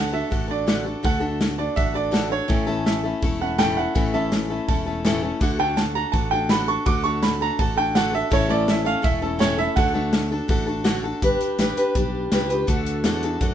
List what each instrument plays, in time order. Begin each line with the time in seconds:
Already playing: fretless electric bass D2, steel-string acoustic guitar D3 A3 D4 F#4 A4, upright piano F#5
0.13 steel-string acoustic guitar D4 F#4 A4, upright piano E5
0.30 fretless electric bass A1, steel-string acoustic guitar A3 D4 F#4 A4, kick, open hi-hat
0.48 steel-string acoustic guitar D4 F#4 A4, upright piano D5
0.67 steel-string acoustic guitar D3 A3 D4 F#4 A4, snare, open hi-hat
0.85 steel-string acoustic guitar D4 F#4 A4
1.03 fretless electric bass D2, steel-string acoustic guitar D3 A3 D4 F#4 A4, upright piano F#5, kick, open hi-hat
1.20 steel-string acoustic guitar D3 A3 D4 F#4 A4
1.41 snare, open hi-hat
1.58 steel-string acoustic guitar D4 F#4 A4, upright piano D5
1.76 fretless electric bass A1, steel-string acoustic guitar A3 D4 F#4 A4, upright piano E5, kick, open hi-hat
1.94 steel-string acoustic guitar D4 F#4 A4, upright piano D5
2.11 steel-string acoustic guitar D3 A3 D4 F#4 A4, snare, open hi-hat
2.30 steel-string acoustic guitar D4 F#4 A4, upright piano C#5
2.48 fretless electric bass A1, steel-string acoustic guitar A2 E3 A3 C#4 E4 A4, kick, open hi-hat
2.67 steel-string acoustic guitar A2 E3 A3 C#4 E4 A4
2.86 upright piano E5, snare, open hi-hat
3.04 steel-string acoustic guitar A3 C#4 E4 A4
3.22 fretless electric bass E1, steel-string acoustic guitar A3 C#4 E4 A4, kick, open hi-hat
3.41 steel-string acoustic guitar A3 C#4 E4 A4, upright piano F#5
3.58 steel-string acoustic guitar A2 E3 A3 C#4 E4 A4, upright piano G5, snare, open hi-hat
3.77 steel-string acoustic guitar A3 C#4 E4 A4, upright piano F#5
3.95 fretless electric bass A1, steel-string acoustic guitar A2 E3 A3 C#4 E4 A4, kick, open hi-hat
4.14 steel-string acoustic guitar A2 E3 A3 C#4 E4 A4, upright piano E5
4.32 snare, open hi-hat
4.50 steel-string acoustic guitar A3 C#4 E4 A4
4.68 fretless electric bass E1, steel-string acoustic guitar A3 C#4 E4 A4, upright piano A5, kick, open hi-hat
4.86 steel-string acoustic guitar A3 C#4 E4 A4
5.04 steel-string acoustic guitar A2 E3 A3 C#4 E4 A4, snare, open hi-hat
5.23 steel-string acoustic guitar A3 C#4 E4 A4
5.41 fretless electric bass D2, steel-string acoustic guitar D3 A3 D4 F#4 A4, kick, open hi-hat
5.59 steel-string acoustic guitar D3 A3 D4 F#4 A4, upright piano G5
5.77 upright piano A5, snare, open hi-hat
5.95 steel-string acoustic guitar D4 F#4 A4, upright piano A#5
6.12 fretless electric bass A1, steel-string acoustic guitar A3 D4 F#4 A4, upright piano A5, kick, open hi-hat
6.31 steel-string acoustic guitar D4 F#4 A4, upright piano G5
6.49 steel-string acoustic guitar D3 A3 D4 F#4 A4, upright piano B5, snare, open hi-hat
6.68 steel-string acoustic guitar D4 F#4 A4, upright piano C#6
6.86 fretless electric bass D2, steel-string acoustic guitar D3 A3 D4 F#4 A4, upright piano D6, kick, open hi-hat
7.04 steel-string acoustic guitar D3 A3 D4 F#4 A4, upright piano C#6
7.22 upright piano B5, snare, open hi-hat
7.41 steel-string acoustic guitar D4 F#4 A4, upright piano A#5
7.59 fretless electric bass A1, steel-string acoustic guitar A3 D4 F#4 A4, upright piano A5, kick, open hi-hat
7.77 steel-string acoustic guitar D4 F#4 A4, upright piano G5
7.95 steel-string acoustic guitar D3 A3 D4 F#4 A4, upright piano F#5, snare, open hi-hat
8.13 steel-string acoustic guitar D4 F#4 A4, upright piano E5
8.30 fretless electric bass A1, steel-string acoustic guitar A2 E3 A3 C#4 E4 A4, upright piano C#5, kick, open hi-hat
8.49 steel-string acoustic guitar A2 E3 A3 C#4 E4 A4, upright piano D5
8.68 upright piano E5, snare, open hi-hat
8.85 steel-string acoustic guitar A3 C#4 E4 A4, upright piano F5
9.02 fretless electric bass E1, steel-string acoustic guitar A3 C#4 E4 A4, upright piano E5, kick, open hi-hat
9.22 steel-string acoustic guitar A3 C#4 E4 A4, upright piano A4
9.39 steel-string acoustic guitar A2 E3 A3 C#4 E4 A4, upright piano C#5, snare, open hi-hat
9.57 steel-string acoustic guitar A3 C#4 E4 A4, upright piano E5
9.76 fretless electric bass D2, steel-string acoustic guitar D3 A3 D4 F#4 A4, upright piano F#5, kick, open hi-hat
9.94 steel-string acoustic guitar D3 A3 D4 F#4 A4
10.13 snare, open hi-hat
10.32 steel-string acoustic guitar D4 F#4 A4
10.48 fretless electric bass A1, steel-string acoustic guitar A3 D4 F#4 A4, kick, open hi-hat
10.67 steel-string acoustic guitar D4 F#4 A4
10.84 steel-string acoustic guitar D3 A3 D4 F#4 A4, snare, open hi-hat
11.04 steel-string acoustic guitar D4 F#4 A4
11.22 fretless electric bass G1, steel-string acoustic guitar G3 D4 G4 B4, kick, closed hi-hat
11.41 muted fretless electric bass stroke, closed hi-hat
11.58 fretless electric bass A1, steel-string acoustic guitar G3 D4 G4 B4, snare, closed hi-hat
11.77 steel-string acoustic guitar D4 G4 B4, muted fretless electric bass stroke, closed hi-hat
11.95 fretless electric bass B1, steel-string acoustic guitar G3 D4 G4 B4, kick, closed hi-hat
12.32 fretless electric bass C#2, steel-string acoustic guitar G3 D4 G4 B4, snare, closed hi-hat
12.49 steel-string acoustic guitar D4 G4 B4, closed hi-hat
12.67 fretless electric bass D2, steel-string acoustic guitar D3 A3 D4 F#4 A4, kick, closed hi-hat
12.86 closed hi-hat
13.04 fretless electric bass E2, steel-string acoustic guitar D3 A3 D4 F#4 A4, snare, closed hi-hat
13.23 steel-string acoustic guitar D4 F#4 A4, closed hi-hat
13.41 fretless electric bass F#2, steel-string acoustic guitar A3 D4 F#4 A4, kick, closed hi-hat